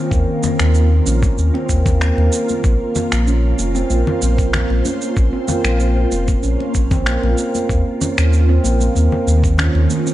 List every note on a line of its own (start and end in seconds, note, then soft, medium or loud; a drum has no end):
0.00 2.60 D#3 medium
0.00 7.66 A#3 medium
0.00 10.14 F4 medium
0.11 0.24 D#2 medium
0.11 0.41 A#3 medium
0.11 kick loud
0.11 shaker soft
0.43 0.59 A#3 medium
0.43 muted conga soft
0.43 low conga medium
0.43 shaker medium
0.59 1.01 D#2 loud
0.59 finger snap medium
0.59 muted conga soft
0.59 shaker soft
0.75 shaker soft
1.06 1.31 A#1 medium
1.06 1.22 C#4 medium
1.06 muted conga soft
1.06 shaker medium
1.23 kick loud
1.23 high conga medium
1.23 shaker soft
1.38 1.51 D#2 medium
1.38 shaker soft
1.54 1.68 C4 loud
1.54 muted conga soft
1.69 2.11 D#2 medium
1.69 1.99 A#3 medium
1.69 kick medium
1.69 shaker medium
1.86 kick loud
1.86 low conga medium
1.86 shaker soft
2.01 2.17 A#3 medium
2.01 finger snap medium
2.01 shaker soft
2.17 2.29 D#2 medium
2.17 muted conga soft
2.17 high conga soft
2.32 shaker medium
2.49 high conga medium
2.49 shaker soft
2.64 2.77 A#1 loud
2.64 2.80 A#3 medium
2.64 7.66 C5 medium
2.64 kick loud
2.64 shaker soft
2.95 muted conga soft
2.95 low conga medium
2.95 shaker medium
3.12 3.53 A#1 loud
3.12 finger snap medium
3.12 shaker soft
3.27 3.43 C#4 medium
3.27 shaker soft
3.59 3.83 F1 medium
3.59 muted conga soft
3.59 shaker medium
3.75 3.89 C4 medium
3.75 high conga medium
3.75 shaker soft
3.90 4.03 A#1 medium
3.90 4.20 A#3 loud
3.90 shaker soft
4.07 low conga medium
4.21 4.64 A#1 medium
4.21 4.37 A#3 medium
4.21 high conga soft
4.21 shaker medium
4.38 kick medium
4.38 shaker soft
4.53 finger snap medium
4.53 low conga medium
4.53 shaker soft
4.70 4.82 A#1 medium
4.70 muted conga soft
4.85 5.01 C#4 medium
4.85 high conga medium
4.85 shaker medium
5.02 shaker soft
5.17 5.29 A#1 medium
5.17 kick loud
5.17 shaker soft
5.33 5.47 C4 loud
5.48 5.78 A#3 loud
5.48 muted conga soft
5.48 low conga medium
5.48 shaker medium
5.64 6.05 A#1 medium
5.64 finger snap medium
5.64 muted conga soft
5.64 shaker soft
5.80 5.96 A#3 medium
5.80 shaker soft
6.12 6.36 F1 medium
6.12 muted conga medium
6.12 shaker medium
6.28 kick loud
6.28 high conga medium
6.28 shaker soft
6.43 6.56 A#1 medium
6.43 6.59 C#4 medium
6.43 shaker soft
6.60 muted conga soft
6.75 7.16 A#1 medium
6.75 kick medium
6.75 shaker medium
6.91 7.05 C4 loud
6.91 kick loud
6.91 low conga medium
6.91 shaker soft
7.06 7.36 A#3 medium
7.06 finger snap medium
7.06 shaker soft
7.23 7.34 A#1 medium
7.23 muted conga medium
7.23 high conga soft
7.38 7.54 A#3 medium
7.38 shaker medium
7.55 high conga medium
7.55 shaker soft
7.69 7.82 D#2 loud
7.69 10.14 D#3 medium
7.69 10.14 A#3 medium
7.69 kick loud
7.69 shaker soft
8.01 8.17 C#4 medium
8.01 muted conga soft
8.01 low conga medium
8.01 shaker medium
8.18 8.59 D#2 loud
8.18 finger snap medium
8.18 shaker soft
8.33 shaker soft
8.49 8.63 C4 loud
8.64 8.89 A#1 medium
8.64 8.94 A#3 medium
8.64 muted conga soft
8.64 shaker medium
8.81 high conga medium
8.81 shaker soft
8.95 9.08 D#2 medium
8.95 9.11 A#3 medium
8.95 shaker soft
9.12 low conga medium
9.27 9.69 D#2 medium
9.27 high conga medium
9.27 shaker medium
9.44 kick medium
9.44 shaker soft
9.58 9.74 C#4 medium
9.58 finger snap medium
9.58 low conga medium
9.58 shaker soft
9.75 9.87 D#2 medium
9.75 muted conga soft
9.90 high conga medium
9.90 shaker medium
10.07 10.14 C4 medium
10.07 shaker soft